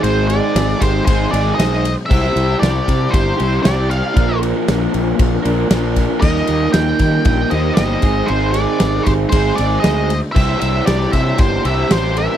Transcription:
Already playing: overdriven electric guitar G#2 D#3 G#3 C4 D#4 G#4, tonewheel organ G#3 D#4 C5
0.02 fingered electric bass G#1, lead electric guitar G#4 C5, ride
0.28 lead electric guitar G#4 D5, ride
0.55 fingered electric bass G#1, snare, ride
0.69 snare
0.79 fingered electric bass G#1, lead electric guitar G4 C5, kick, ride
1.05 fingered electric bass G#1, overdriven electric guitar G#2 D#3 G#3 C4 D#4, lead electric guitar G#4 C5, kick, ride
1.09 overdriven electric guitar G#4
1.31 fingered electric bass G#1, overdriven electric guitar G#2 D#3 G#3 C4 D#4 G#4, lead electric guitar G#4 D5, ride
1.55 fingered electric bass B1, lead electric guitar C5 D#5
1.59 snare, ride
1.73 snare
1.85 ride
2.06 overdriven electric guitar C3 G3, lead electric guitar E5
2.10 fingered electric bass C2, tonewheel organ G#3 F4 C#5, overdriven electric guitar C4 E4 G4, lead electric guitar C5, kick, crash
2.24 tonewheel organ G3 E4 C5, snare
2.36 fingered electric bass C2, ride
2.60 fingered electric bass C2, lead electric guitar G4 D5, snare, ride
2.88 fingered electric bass C3, kick, ride
3.11 fingered electric bass G1, lead electric guitar G4 C5, kick, ride
3.38 fingered electric bass C2, overdriven electric guitar C3 G3 C4 E4 G4, ride
3.63 fingered electric bass C2, overdriven electric guitar C3 G3 C4 E4 G4, lead electric guitar G4 D5, snare, ride
3.89 lead electric guitar D5 F5, ride
4.14 fingered electric bass A#1, overdriven electric guitar A#2 D3 F3 A#3 D4 A#4, tonewheel organ F3 D4 A#4, kick, ride
4.43 ride
4.68 fingered electric bass A#1, snare, ride
4.94 fingered electric bass A#1, ride
5.19 fingered electric bass A#1, kick, ride
5.43 fingered electric bass A#1, overdriven electric guitar A#2 D3 F3 A#3 D4 A#4, ride
5.69 fingered electric bass A#1, overdriven electric guitar A#2 D3 F3 A#3 D4 A#4, snare, ride
5.96 kick, ride
6.21 fingered electric bass D#2, overdriven electric guitar D#3 G3 A#3 D#4 G4, tonewheel organ G3 D#4 A#4, lead electric guitar A#4 D#5, kick, crash
6.35 snare
6.47 fingered electric bass D#2, ride
6.73 fingered electric bass D#2, lead electric guitar D#5 G5, snare, ride
6.99 fingered electric bass D#3, kick, ride
7.25 fingered electric bass A#1, lead electric guitar D#5 G5, kick, ride
7.50 fingered electric bass D#2, overdriven electric guitar D#3 G3 A#3 D#4 G4, lead electric guitar C5 D#5, ride
7.75 fingered electric bass G1, overdriven electric guitar D#3 G3 A#3 D#4 G4, lead electric guitar C5 D#5, snare, ride
7.89 snare
8.01 fingered electric bass G#1, overdriven electric guitar G#3 C4 D#4 G#4, tonewheel organ G#3 D#4 C5, kick, ride
8.26 fingered electric bass G#1, lead electric guitar G#4 C5, ride
8.51 lead electric guitar G#4 D5, ride
8.80 fingered electric bass G#1, snare, ride
9.03 fingered electric bass G#1, lead electric guitar G4 C5, kick, ride
9.29 fingered electric bass G#1, overdriven electric guitar G#3 C4 D#4, lead electric guitar G#4 C5, kick, ride
9.34 overdriven electric guitar G#4
9.56 fingered electric bass G#1, overdriven electric guitar C4 D#4 G#4, lead electric guitar G#4 D5, ride
9.60 overdriven electric guitar G#3
9.80 lead electric guitar C5 D#5, snare, ride
9.85 fingered electric bass D2
10.10 ride
10.32 fingered electric bass C2, overdriven electric guitar C3 E3 G3, lead electric guitar C5 E5, kick, crash
10.36 tonewheel organ G3 E4 C5, overdriven electric guitar C4 G4
10.59 fingered electric bass C2, lead electric guitar C5 E5, ride
10.86 fingered electric bass C2, lead electric guitar G4 D5, snare, ride
11.13 fingered electric bass C3, lead electric guitar C5 E5, kick, ride
11.38 fingered electric bass G1, lead electric guitar G4 C5, kick, ride
11.64 fingered electric bass C2, overdriven electric guitar C3 E3 G3 C4 G4, lead electric guitar C5 E5, ride
11.89 fingered electric bass A1, overdriven electric guitar C3 E3 G3 C4 G4, lead electric guitar G4 C5, snare, ride
12.04 snare
12.17 lead electric guitar A#4 E5, ride

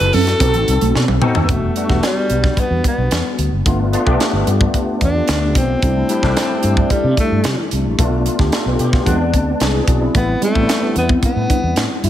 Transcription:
Already playing: tine electric piano C4 E4 F#4 A4, alto saxophone B4
0.00 fretless electric bass F#1, closed hi-hat
0.13 fretless electric bass F#2, clean electric guitar C4, alto saxophone A4, open hi-hat
0.27 snare, closed hi-hat
0.40 fretless electric bass B1, clean electric guitar B3, tine electric piano C4 D#4 F#4 G4, kick, closed hi-hat
0.48 tine electric piano A4
0.54 fretless electric bass A1, muted clean electric guitar stroke, closed hi-hat
0.68 fretless electric bass C2, closed hi-hat
0.81 fretless electric bass B1, clean electric guitar A3, closed hi-hat
0.95 fretless electric bass B2, snare
1.08 fretless electric bass B1, high tom
1.21 clean electric guitar B3, tine electric piano C4 D#4 F#4 A4, mid tom
1.35 fretless electric bass D#2, floor tom
1.44 tine electric piano G3, alto saxophone B3
1.48 fretless electric bass E1, alto saxophone A3, tine electric piano B3 D4 F#4, kick, closed hi-hat
1.76 tine electric piano G3 B3 D4 F#4, closed hi-hat
1.89 fretless electric bass E1, tine electric piano G3 B3 D4 F#4, kick, snare
2.03 alto saxophone G3, snare, closed hi-hat
2.30 fretless electric bass B1, closed hi-hat
2.44 kick, snare
2.57 alto saxophone B3, muted fretless electric bass stroke, kick, closed hi-hat
2.70 fretless electric bass E2
2.84 alto saxophone B3, kick, closed hi-hat
2.98 fretless electric bass B1
3.11 fretless electric bass E2, snare, closed hi-hat
3.38 fretless electric bass D2, closed hi-hat
3.52 fretless electric bass F#1
3.66 fretless electric bass G1, tine electric piano A3 B3 D4 F4, kick, closed hi-hat
3.92 tine electric piano A3 B3 D4 F4, closed hi-hat
4.05 fretless electric bass B1, tine electric piano A3 B3 D4 G4, kick
4.20 snare, closed hi-hat
4.33 fretless electric bass G1
4.47 fretless electric bass G2, closed hi-hat
4.61 kick
4.74 kick, closed hi-hat
5.01 fretless electric bass E2, alto saxophone D4, kick, closed hi-hat
5.28 fretless electric bass D2, snare, closed hi-hat
5.55 fretless electric bass B1, alto saxophone C4, kick, closed hi-hat
5.82 fretless electric bass C2, tine electric piano G3 A3 D4 E4, kick, closed hi-hat
6.09 tine electric piano G3 A3 D4 E4, closed hi-hat
6.22 fretless electric bass C2, tine electric piano G3 A3 D4 G4, kick, snare
6.37 snare, closed hi-hat
6.63 fretless electric bass G2, closed hi-hat
6.77 kick
6.90 alto saxophone G3, muted fretless electric bass stroke, kick, closed hi-hat
7.04 fretless electric bass C3
7.17 alto saxophone A3, kick, closed hi-hat
7.31 fretless electric bass G2
7.44 fretless electric bass C3, snare, closed hi-hat
7.71 fretless electric bass C2, closed hi-hat
7.86 fretless electric bass A#1
7.98 fretless electric bass B1, tine electric piano A3 B3 D4 F4, kick, closed hi-hat
8.26 tine electric piano D4 F4, closed hi-hat
8.39 fretless electric bass D2, tine electric piano G4, kick, snare
8.52 tine electric piano F4 A4, snare, closed hi-hat
8.66 fretless electric bass B1, tine electric piano G4 B4
8.79 fretless electric bass B2, tine electric piano G4, closed hi-hat
8.92 tine electric piano D4 F4, kick, snare
9.05 fretless electric bass E2, tine electric piano G3 B3 C4 D4, kick, closed hi-hat
9.11 tine electric piano G#3
9.34 fretless electric bass D2, kick, closed hi-hat
9.60 fretless electric bass C2, tine electric piano G#4 B4, snare, closed hi-hat
9.74 tine electric piano E4 G#4
9.88 fretless electric bass B1, tine electric piano D4 F#4, kick, closed hi-hat
10.01 tine electric piano C4 E4
10.14 fretless electric bass A1, tine electric piano G3 B3 C4 E4, clean electric guitar A3, alto saxophone B3, kick, closed hi-hat
10.28 muted clean electric guitar stroke
10.41 tine electric piano G3 B3 C4 D4, clean electric guitar G3, alto saxophone A3, closed hi-hat
10.55 fretless electric bass A1, tine electric piano G3 B3 C4 E4, kick
10.69 snare, closed hi-hat
10.82 clean electric guitar B3
10.95 fretless electric bass E2, alto saxophone B3, muted clean electric guitar stroke, closed hi-hat
11.09 clean electric guitar B3, kick
11.23 alto saxophone B3, muted fretless electric bass stroke, kick, closed hi-hat
11.36 fretless electric bass A2
11.50 clean electric guitar D4, kick, closed hi-hat
11.63 fretless electric bass E2
11.76 fretless electric bass A2, snare, closed hi-hat
12.03 fretless electric bass G2, clean electric guitar E4, closed hi-hat

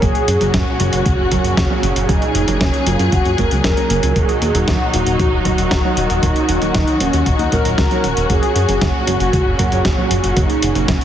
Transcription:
Already playing: string section A#2 C#4
0.02 analog synth bass F#1, string section C#3 F#3 F#4, clean electric guitar F#3 A#3 C#4 A#4, analog polysynth G#4, kick, closed hi-hat
0.15 closed hi-hat
0.28 analog synth bass F#2, closed hi-hat
0.41 analog synth bass F#1, clean electric guitar F#3 A#3 C#4 A#4, closed hi-hat
0.54 analog synth bass F#1, analog polysynth F#4, kick, snare, closed hi-hat
0.79 analog synth bass F#1, clean electric guitar F#3 A#3 C#4 A#4, closed hi-hat
0.93 analog synth bass F#1, closed hi-hat
1.06 analog synth bass C#2, analog polysynth F#4, kick, closed hi-hat
1.18 analog synth bass F#1
1.31 analog synth bass F#1, clean electric guitar F#3 A#3 C#4 A#4, kick, closed hi-hat
1.44 analog synth bass F#1, closed hi-hat
1.57 analog synth bass F#1, kick, snare, closed hi-hat
1.70 clean electric guitar F#3 A#3 C#4 C#5
1.83 analog synth bass F#1, closed hi-hat
1.96 analog synth bass F#1, closed hi-hat
2.09 analog synth bass F#1, clean electric guitar F#3 A#3 C#4 A#4, analog polysynth D#4, string section G#4, kick, closed hi-hat
2.22 closed hi-hat
2.35 analog synth bass F#1, closed hi-hat
2.47 analog synth bass F#1, clean electric guitar F#3 A#3 C#4 A#4, closed hi-hat
2.61 analog synth bass F#1, analog polysynth C#4, kick, snare, closed hi-hat
2.74 closed hi-hat
2.86 analog synth bass F#1, clean electric guitar F#3 A#3 C#4 A#4, analog polysynth F4, closed hi-hat
2.99 analog synth bass F#2, closed hi-hat
3.12 analog synth bass F#1, analog polysynth F#4, kick, closed hi-hat
3.25 analog synth bass F#2, closed hi-hat
3.38 analog synth bass F#1, clean electric guitar F#3 A#3 C#4 A#4, analog polysynth A#4, kick, closed hi-hat
3.51 analog synth bass C#2, clean electric guitar F#3 A#3 C#4 A#4, closed hi-hat
3.64 analog synth bass F#1, analog polysynth A#4, kick, snare, closed hi-hat
3.77 clean electric guitar F#3 A#3 C#4 C#5, closed hi-hat
3.90 analog synth bass F#1, closed hi-hat
4.03 analog synth bass C#2, closed hi-hat
4.16 analog synth bass D#1, string section D#3 D#4 F#4, clean electric guitar F#3 A#3 D#4 A#4, analog polysynth G#4, kick, closed hi-hat
4.29 closed hi-hat
4.42 analog synth bass D#2, closed hi-hat
4.55 analog synth bass D#1, clean electric guitar F#3 A#3 D#4 A#4, closed hi-hat
4.68 analog synth bass D#1, analog polysynth F#4, kick, snare, closed hi-hat
4.93 analog synth bass D#1, clean electric guitar F#3 A#3 D#4 A#4, closed hi-hat
5.06 analog synth bass D#1, closed hi-hat
5.19 analog synth bass A#1, analog polysynth F#4, kick, closed hi-hat
5.32 analog synth bass D#1
5.45 analog synth bass D#1, clean electric guitar F#3 A#3 D#4 A#4, kick, closed hi-hat
5.58 analog synth bass D#1, closed hi-hat
5.71 analog synth bass D#1, kick, snare, closed hi-hat
5.84 clean electric guitar F#3 A#3 D#4 C#5
5.97 analog synth bass D#1, closed hi-hat
6.10 analog synth bass D#1, closed hi-hat
6.23 analog synth bass D#1, clean electric guitar F#3 A#3 D#4 A#4, string section C#4, analog polysynth D#4, kick, closed hi-hat
6.36 closed hi-hat
6.49 analog synth bass D#1, closed hi-hat
6.61 analog synth bass D#1, clean electric guitar F#3 A#3 D#4 A#4, closed hi-hat
6.75 analog synth bass D#1, analog polysynth D#4, kick, snare, closed hi-hat
6.88 closed hi-hat
7.00 analog synth bass D#1, clean electric guitar F#3 A#3 D#4 A#4, analog polysynth C#4, closed hi-hat
7.13 analog synth bass D#2, closed hi-hat
7.26 analog synth bass D#1, analog polysynth D#4, kick, closed hi-hat
7.39 analog synth bass D#2, closed hi-hat
7.52 analog synth bass D#1, clean electric guitar F#3 A#3 D#4 A#4, analog polysynth A#4, kick, closed hi-hat
7.65 analog synth bass D#1, closed hi-hat
7.78 analog synth bass C#2, analog polysynth A#4, kick, snare, closed hi-hat
7.91 clean electric guitar F#3 A#3 D#4 C#5, closed hi-hat
8.04 analog synth bass D#1, closed hi-hat
8.17 analog synth bass D#1, closed hi-hat
8.29 analog synth bass F#1, string section A#2 C#3, clean electric guitar F#3 A#3 C#4 A#4, analog polysynth G#4, kick, closed hi-hat
8.43 closed hi-hat
8.56 analog synth bass F#2, closed hi-hat
8.68 analog synth bass F#1, clean electric guitar F#3 A#3 C#4 A#4, closed hi-hat
8.81 analog synth bass F#1, analog polysynth F#4, kick, snare, closed hi-hat
9.07 analog synth bass F#1, clean electric guitar F#3 A#3 C#4 A#4, closed hi-hat
9.20 analog synth bass F#1, closed hi-hat
9.33 analog synth bass C#2, analog polysynth F#4, kick, closed hi-hat
9.46 analog synth bass F#1
9.59 analog synth bass F#1, clean electric guitar F#3 A#3 C#4 A#4, kick, closed hi-hat
9.72 analog synth bass F#1, closed hi-hat
9.85 analog synth bass F#1, kick, snare, closed hi-hat
9.97 clean electric guitar F#3 A#3 C#4 C#5
10.11 analog synth bass F#1, closed hi-hat
10.24 analog synth bass F#1, closed hi-hat
10.37 analog synth bass F#1, clean electric guitar F#3 A#3 C#4 A#4, analog polysynth D#4, kick, closed hi-hat
10.50 closed hi-hat
10.62 analog synth bass F#1, closed hi-hat
10.75 analog synth bass F#1, clean electric guitar F#3 A#3 C#4 A#4, closed hi-hat
10.88 analog synth bass F#1, analog polysynth C#4, kick, snare, closed hi-hat
11.01 closed hi-hat

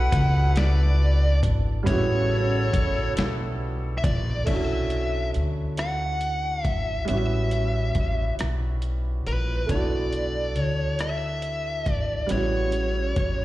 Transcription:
Already playing: grand piano A3 B3 D4 E4 F#4, horn section E4 F#4 B4, lead electric guitar F#5
0.12 upright bass C#2, kick, closed hi-hat
0.56 lead electric guitar D5, snare, closed hi-hat
1.43 upright bass G#1, kick, closed hi-hat
1.83 grand piano G3 B3, horn section E4 F#4 A4, lead electric guitar C#5, kick, closed hi-hat
1.87 upright bass A1, grand piano C#3 E4
1.92 grand piano F#4
2.73 upright bass A1, kick, closed hi-hat
3.17 upright bass B1, snare, closed hi-hat
3.98 lead electric guitar E5
4.04 upright bass A#1, lead electric guitar D5, kick, closed hi-hat
4.44 upright bass B1, grand piano A3 C#4, lead electric guitar E5, kick, closed hi-hat, crash
4.49 grand piano D4 E4 F#4
4.90 closed hi-hat
5.34 upright bass D2, closed hi-hat
5.77 lead electric guitar F#5, cross-stick, closed hi-hat
6.21 closed hi-hat
6.64 upright bass G#1, lead electric guitar E5, kick, closed hi-hat
7.05 grand piano G3 B3, lead electric guitar E5, closed hi-hat
7.09 upright bass A1, grand piano C#4 E4
7.13 grand piano F#4
7.51 closed hi-hat
7.95 upright bass A1, kick, closed hi-hat
8.39 upright bass B1, cross-stick, closed hi-hat
8.82 closed hi-hat
9.27 upright bass A#1, lead electric guitar B4, closed hi-hat
9.66 upright bass B1, grand piano A3 B3, kick, closed hi-hat
9.71 grand piano D4 E4, lead electric guitar D5
9.75 grand piano F#4
10.13 closed hi-hat
10.56 upright bass D2, lead electric guitar C#5, closed hi-hat
10.99 lead electric guitar E5, cross-stick, closed hi-hat
11.42 closed hi-hat
11.86 upright bass G#1, kick, closed hi-hat
11.91 lead electric guitar D5
12.27 grand piano G3 B3, closed hi-hat
12.31 upright bass A1, grand piano C#3 E4, lead electric guitar C#5
12.35 grand piano F#4
12.72 closed hi-hat
13.16 upright bass A1, kick, closed hi-hat

